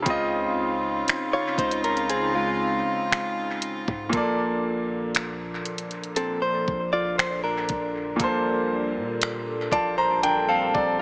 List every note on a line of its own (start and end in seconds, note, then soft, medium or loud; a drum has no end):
0.02 1.04 C#2 loud
0.02 4.07 C#3 medium
0.02 4.09 C#3 medium
0.02 4.08 C4 medium
0.02 4.09 C4 medium
0.02 4.09 D#4 medium
0.02 4.09 F4 medium
0.02 kick loud
0.02 closed hi-hat medium
0.08 4.10 F4 medium
0.08 4.11 D#5 medium
1.08 finger snap loud
1.08 closed hi-hat medium
1.33 1.58 F4 medium
1.33 1.58 C#5 medium
1.58 2.82 C#2 loud
1.58 1.83 D#4 medium
1.58 1.83 C5 medium
1.58 kick medium
1.58 closed hi-hat medium
1.71 closed hi-hat medium
1.84 2.09 C#4 medium
1.84 2.08 A#4 medium
1.84 closed hi-hat soft
1.97 closed hi-hat soft
2.10 2.34 C4 medium
2.10 2.34 G#4 medium
2.10 closed hi-hat medium
2.35 3.84 G#3 medium
2.35 3.84 F4 medium
3.12 finger snap loud
3.62 closed hi-hat medium
3.88 4.12 G#2 loud
3.88 kick medium
4.09 5.62 A#1 loud
4.09 8.14 A#2 medium
4.09 11.02 A#2 medium
4.09 11.02 D3 medium
4.09 8.16 F3 medium
4.09 8.15 A#3 medium
4.09 kick loud
4.09 closed hi-hat medium
4.15 8.17 A4 medium
4.15 8.18 D5 medium
5.15 finger snap loud
5.15 closed hi-hat medium
5.65 closed hi-hat medium
5.78 closed hi-hat medium
5.91 closed hi-hat soft
6.04 closed hi-hat soft
6.16 6.41 C4 medium
6.16 6.41 A4 medium
6.16 closed hi-hat medium
6.42 6.90 C5 medium
6.68 7.65 A#1 loud
6.68 kick medium
6.93 7.17 F4 medium
6.93 7.17 D5 medium
7.18 7.42 C5 medium
7.18 finger snap loud
7.44 8.92 D4 medium
7.44 8.92 A#4 medium
7.69 8.18 A#1 medium
7.69 kick medium
7.69 closed hi-hat medium
8.16 8.98 A#1 loud
8.16 11.02 A#2 medium
8.16 11.02 G3 medium
8.16 11.02 A#3 medium
8.16 kick loud
8.16 closed hi-hat medium
8.21 11.02 A4 medium
8.21 11.02 C5 medium
8.96 9.69 A#2 medium
9.22 finger snap loud
9.22 closed hi-hat medium
9.72 10.70 A#1 loud
9.72 9.97 F4 medium
9.72 9.97 D5 medium
9.72 9.96 A5 medium
9.72 kick medium
9.72 closed hi-hat medium
9.98 10.22 C5 medium
9.98 10.21 A#5 medium
10.23 10.48 D4 medium
10.23 10.47 A#4 medium
10.23 10.47 G5 medium
10.23 closed hi-hat medium
10.49 10.97 C4 medium
10.49 10.97 A4 medium
10.49 10.72 F5 medium
10.74 11.02 A#1 loud
10.74 11.02 D5 medium
10.74 kick medium